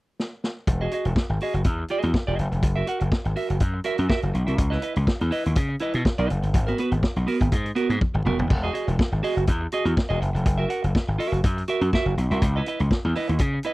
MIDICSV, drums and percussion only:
0, 0, Header, 1, 2, 480
1, 0, Start_track
1, 0, Tempo, 489396
1, 661, Time_signature, 4, 2, 24, 8
1, 13470, End_track
2, 0, Start_track
2, 0, Title_t, "Drums"
2, 191, Note_on_c, 9, 38, 63
2, 289, Note_off_c, 9, 38, 0
2, 430, Note_on_c, 9, 38, 68
2, 528, Note_off_c, 9, 38, 0
2, 660, Note_on_c, 9, 36, 99
2, 663, Note_on_c, 9, 42, 75
2, 759, Note_off_c, 9, 36, 0
2, 761, Note_off_c, 9, 42, 0
2, 897, Note_on_c, 9, 42, 70
2, 995, Note_off_c, 9, 42, 0
2, 1028, Note_on_c, 9, 42, 40
2, 1126, Note_off_c, 9, 42, 0
2, 1137, Note_on_c, 9, 36, 101
2, 1146, Note_on_c, 9, 38, 101
2, 1235, Note_off_c, 9, 36, 0
2, 1244, Note_off_c, 9, 38, 0
2, 1377, Note_on_c, 9, 46, 61
2, 1475, Note_off_c, 9, 46, 0
2, 1516, Note_on_c, 9, 42, 50
2, 1611, Note_off_c, 9, 42, 0
2, 1611, Note_on_c, 9, 42, 84
2, 1617, Note_on_c, 9, 36, 105
2, 1709, Note_off_c, 9, 42, 0
2, 1716, Note_off_c, 9, 36, 0
2, 1847, Note_on_c, 9, 42, 53
2, 1945, Note_off_c, 9, 42, 0
2, 1984, Note_on_c, 9, 42, 44
2, 2082, Note_off_c, 9, 42, 0
2, 2098, Note_on_c, 9, 36, 94
2, 2108, Note_on_c, 9, 38, 108
2, 2196, Note_off_c, 9, 36, 0
2, 2206, Note_off_c, 9, 38, 0
2, 2343, Note_on_c, 9, 42, 49
2, 2441, Note_off_c, 9, 42, 0
2, 2474, Note_on_c, 9, 42, 39
2, 2572, Note_off_c, 9, 42, 0
2, 2577, Note_on_c, 9, 36, 102
2, 2579, Note_on_c, 9, 42, 79
2, 2675, Note_off_c, 9, 36, 0
2, 2677, Note_off_c, 9, 42, 0
2, 2816, Note_on_c, 9, 42, 75
2, 2914, Note_off_c, 9, 42, 0
2, 2945, Note_on_c, 9, 42, 40
2, 3043, Note_off_c, 9, 42, 0
2, 3058, Note_on_c, 9, 36, 101
2, 3068, Note_on_c, 9, 38, 103
2, 3156, Note_off_c, 9, 36, 0
2, 3166, Note_off_c, 9, 38, 0
2, 3187, Note_on_c, 9, 42, 32
2, 3285, Note_off_c, 9, 42, 0
2, 3298, Note_on_c, 9, 46, 59
2, 3396, Note_off_c, 9, 46, 0
2, 3432, Note_on_c, 9, 42, 48
2, 3530, Note_off_c, 9, 42, 0
2, 3531, Note_on_c, 9, 42, 84
2, 3537, Note_on_c, 9, 36, 102
2, 3629, Note_off_c, 9, 42, 0
2, 3635, Note_off_c, 9, 36, 0
2, 3765, Note_on_c, 9, 42, 60
2, 3863, Note_off_c, 9, 42, 0
2, 3902, Note_on_c, 9, 42, 46
2, 4000, Note_off_c, 9, 42, 0
2, 4017, Note_on_c, 9, 36, 94
2, 4024, Note_on_c, 9, 38, 105
2, 4115, Note_off_c, 9, 36, 0
2, 4122, Note_off_c, 9, 38, 0
2, 4142, Note_on_c, 9, 42, 33
2, 4240, Note_off_c, 9, 42, 0
2, 4262, Note_on_c, 9, 42, 52
2, 4360, Note_off_c, 9, 42, 0
2, 4390, Note_on_c, 9, 42, 45
2, 4488, Note_off_c, 9, 42, 0
2, 4495, Note_on_c, 9, 42, 86
2, 4496, Note_on_c, 9, 36, 106
2, 4593, Note_off_c, 9, 42, 0
2, 4594, Note_off_c, 9, 36, 0
2, 4631, Note_on_c, 9, 38, 34
2, 4727, Note_on_c, 9, 42, 71
2, 4729, Note_off_c, 9, 38, 0
2, 4825, Note_off_c, 9, 42, 0
2, 4862, Note_on_c, 9, 42, 42
2, 4960, Note_off_c, 9, 42, 0
2, 4974, Note_on_c, 9, 36, 100
2, 4983, Note_on_c, 9, 38, 102
2, 5072, Note_off_c, 9, 36, 0
2, 5081, Note_off_c, 9, 38, 0
2, 5105, Note_on_c, 9, 42, 35
2, 5203, Note_off_c, 9, 42, 0
2, 5215, Note_on_c, 9, 46, 63
2, 5313, Note_off_c, 9, 46, 0
2, 5351, Note_on_c, 9, 42, 51
2, 5447, Note_off_c, 9, 42, 0
2, 5447, Note_on_c, 9, 42, 85
2, 5456, Note_on_c, 9, 36, 114
2, 5546, Note_off_c, 9, 42, 0
2, 5554, Note_off_c, 9, 36, 0
2, 5682, Note_on_c, 9, 42, 58
2, 5780, Note_off_c, 9, 42, 0
2, 5821, Note_on_c, 9, 42, 44
2, 5919, Note_off_c, 9, 42, 0
2, 5936, Note_on_c, 9, 36, 100
2, 5941, Note_on_c, 9, 38, 107
2, 6034, Note_off_c, 9, 36, 0
2, 6039, Note_off_c, 9, 38, 0
2, 6061, Note_on_c, 9, 42, 34
2, 6159, Note_off_c, 9, 42, 0
2, 6179, Note_on_c, 9, 42, 49
2, 6277, Note_off_c, 9, 42, 0
2, 6308, Note_on_c, 9, 42, 43
2, 6406, Note_off_c, 9, 42, 0
2, 6413, Note_on_c, 9, 42, 83
2, 6415, Note_on_c, 9, 36, 102
2, 6511, Note_off_c, 9, 42, 0
2, 6513, Note_off_c, 9, 36, 0
2, 6551, Note_on_c, 9, 42, 32
2, 6649, Note_off_c, 9, 42, 0
2, 6650, Note_on_c, 9, 42, 72
2, 6748, Note_off_c, 9, 42, 0
2, 6784, Note_on_c, 9, 42, 42
2, 6882, Note_off_c, 9, 42, 0
2, 6893, Note_on_c, 9, 36, 91
2, 6901, Note_on_c, 9, 38, 109
2, 6991, Note_off_c, 9, 36, 0
2, 6999, Note_off_c, 9, 38, 0
2, 7024, Note_on_c, 9, 42, 33
2, 7122, Note_off_c, 9, 42, 0
2, 7136, Note_on_c, 9, 46, 62
2, 7234, Note_off_c, 9, 46, 0
2, 7266, Note_on_c, 9, 36, 95
2, 7273, Note_on_c, 9, 42, 47
2, 7364, Note_off_c, 9, 36, 0
2, 7371, Note_off_c, 9, 42, 0
2, 7372, Note_on_c, 9, 42, 76
2, 7376, Note_on_c, 9, 36, 109
2, 7470, Note_off_c, 9, 42, 0
2, 7474, Note_off_c, 9, 36, 0
2, 7510, Note_on_c, 9, 42, 37
2, 7608, Note_off_c, 9, 42, 0
2, 7610, Note_on_c, 9, 42, 54
2, 7708, Note_off_c, 9, 42, 0
2, 7748, Note_on_c, 9, 42, 44
2, 7846, Note_off_c, 9, 42, 0
2, 7859, Note_on_c, 9, 36, 106
2, 7862, Note_on_c, 9, 48, 54
2, 7957, Note_off_c, 9, 36, 0
2, 7960, Note_off_c, 9, 48, 0
2, 7993, Note_on_c, 9, 47, 57
2, 8091, Note_off_c, 9, 47, 0
2, 8105, Note_on_c, 9, 45, 75
2, 8203, Note_off_c, 9, 45, 0
2, 8231, Note_on_c, 9, 43, 84
2, 8329, Note_off_c, 9, 43, 0
2, 8339, Note_on_c, 9, 36, 114
2, 8346, Note_on_c, 9, 49, 85
2, 8438, Note_off_c, 9, 36, 0
2, 8444, Note_off_c, 9, 49, 0
2, 8579, Note_on_c, 9, 42, 79
2, 8677, Note_off_c, 9, 42, 0
2, 8715, Note_on_c, 9, 42, 44
2, 8813, Note_off_c, 9, 42, 0
2, 8818, Note_on_c, 9, 36, 105
2, 8833, Note_on_c, 9, 38, 104
2, 8916, Note_off_c, 9, 36, 0
2, 8931, Note_off_c, 9, 38, 0
2, 9063, Note_on_c, 9, 46, 59
2, 9161, Note_off_c, 9, 46, 0
2, 9197, Note_on_c, 9, 42, 49
2, 9290, Note_off_c, 9, 42, 0
2, 9290, Note_on_c, 9, 42, 81
2, 9296, Note_on_c, 9, 36, 108
2, 9388, Note_off_c, 9, 42, 0
2, 9394, Note_off_c, 9, 36, 0
2, 9531, Note_on_c, 9, 42, 62
2, 9629, Note_off_c, 9, 42, 0
2, 9670, Note_on_c, 9, 42, 45
2, 9768, Note_off_c, 9, 42, 0
2, 9780, Note_on_c, 9, 36, 106
2, 9791, Note_on_c, 9, 38, 120
2, 9878, Note_off_c, 9, 36, 0
2, 9889, Note_off_c, 9, 38, 0
2, 10028, Note_on_c, 9, 42, 54
2, 10126, Note_off_c, 9, 42, 0
2, 10159, Note_on_c, 9, 42, 44
2, 10257, Note_off_c, 9, 42, 0
2, 10257, Note_on_c, 9, 42, 81
2, 10258, Note_on_c, 9, 36, 107
2, 10355, Note_off_c, 9, 42, 0
2, 10356, Note_off_c, 9, 36, 0
2, 10494, Note_on_c, 9, 42, 78
2, 10592, Note_off_c, 9, 42, 0
2, 10631, Note_on_c, 9, 42, 43
2, 10729, Note_off_c, 9, 42, 0
2, 10739, Note_on_c, 9, 36, 92
2, 10751, Note_on_c, 9, 38, 107
2, 10837, Note_off_c, 9, 36, 0
2, 10849, Note_off_c, 9, 38, 0
2, 10985, Note_on_c, 9, 46, 66
2, 11083, Note_off_c, 9, 46, 0
2, 11120, Note_on_c, 9, 42, 53
2, 11217, Note_off_c, 9, 42, 0
2, 11217, Note_on_c, 9, 42, 75
2, 11220, Note_on_c, 9, 36, 108
2, 11315, Note_off_c, 9, 42, 0
2, 11318, Note_off_c, 9, 36, 0
2, 11355, Note_on_c, 9, 42, 37
2, 11452, Note_off_c, 9, 42, 0
2, 11452, Note_on_c, 9, 42, 61
2, 11550, Note_off_c, 9, 42, 0
2, 11588, Note_on_c, 9, 42, 43
2, 11686, Note_off_c, 9, 42, 0
2, 11701, Note_on_c, 9, 36, 89
2, 11711, Note_on_c, 9, 38, 101
2, 11799, Note_off_c, 9, 36, 0
2, 11809, Note_off_c, 9, 38, 0
2, 11947, Note_on_c, 9, 42, 58
2, 12045, Note_off_c, 9, 42, 0
2, 12077, Note_on_c, 9, 42, 42
2, 12175, Note_off_c, 9, 42, 0
2, 12181, Note_on_c, 9, 36, 106
2, 12182, Note_on_c, 9, 42, 85
2, 12279, Note_off_c, 9, 36, 0
2, 12280, Note_off_c, 9, 42, 0
2, 12418, Note_on_c, 9, 42, 71
2, 12516, Note_off_c, 9, 42, 0
2, 12549, Note_on_c, 9, 42, 38
2, 12647, Note_off_c, 9, 42, 0
2, 12660, Note_on_c, 9, 36, 91
2, 12668, Note_on_c, 9, 38, 92
2, 12758, Note_off_c, 9, 36, 0
2, 12766, Note_off_c, 9, 38, 0
2, 12903, Note_on_c, 9, 46, 71
2, 13001, Note_off_c, 9, 46, 0
2, 13036, Note_on_c, 9, 42, 54
2, 13128, Note_off_c, 9, 42, 0
2, 13128, Note_on_c, 9, 42, 90
2, 13139, Note_on_c, 9, 36, 111
2, 13226, Note_off_c, 9, 42, 0
2, 13237, Note_off_c, 9, 36, 0
2, 13367, Note_on_c, 9, 42, 61
2, 13465, Note_off_c, 9, 42, 0
2, 13470, End_track
0, 0, End_of_file